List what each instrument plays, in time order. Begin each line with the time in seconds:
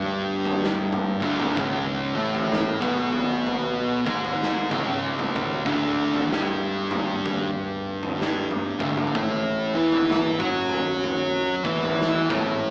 Already playing: fingered electric bass G1, distorted electric guitar G2 G3
0.45 floor tom
0.64 snare
0.93 mid tom
1.22 fingered electric bass D1, distorted electric guitar D2 D3, kick
1.40 mid tom
1.57 fingered electric bass C#1, distorted electric guitar C#2 C#3, kick, floor tom
2.16 fingered electric bass A1, distorted electric guitar A2 A3
2.35 floor tom
2.52 snare, mid tom
2.82 fingered electric bass B1, distorted electric guitar B2 B3, kick
3.13 floor tom
3.47 floor tom
4.06 fingered electric bass G#1, distorted electric guitar G#2 G#3, kick
4.25 floor tom
4.43 snare
4.71 fingered electric bass C#1, distorted electric guitar C#2 C#3, kick, mid tom
5.19 mid tom
5.36 kick, floor tom
5.65 fingered electric bass D1, distorted electric guitar D2 D3, kick
6.14 floor tom
6.31 fingered electric bass G1, distorted electric guitar G2 G3, snare
6.91 floor tom, mid tom
7.26 kick, floor tom
8.03 floor tom
8.21 snare
8.51 mid tom
8.80 fingered electric bass D1, distorted electric guitar D2 D3, kick
8.97 mid tom
9.15 fingered electric bass A1, distorted electric guitar A2 A3, kick, floor tom
9.75 fingered electric bass E2, distorted electric guitar E3 E4
9.92 floor tom
10.10 snare, mid tom
10.39 fingered electric bass F#2, distorted electric guitar F#3 F#4, kick
10.69 floor tom
11.04 floor tom
11.64 fingered electric bass E2, distorted electric guitar E3 E4, kick
11.83 floor tom
12.02 snare
12.29 fingered electric bass A1, distorted electric guitar A2 A3, kick, mid tom